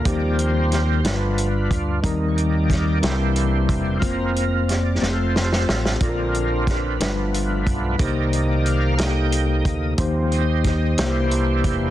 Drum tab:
HH |x-x-x-x-x-x-|x-x-x-x-x-x-|x-x-x-------|x-x-x-x-x-x-|
SD |----o-o-----|----o-o-----|----o-o-oooo|----o-o-----|
BD |o---------o-|o---o-----o-|o-----------|o---o-----o-|

HH |x-x-x-x-x-x-|x-x-x-x-x-x-|
SD |------o-----|----o-o-----|
BD |o---------o-|o---o-----o-|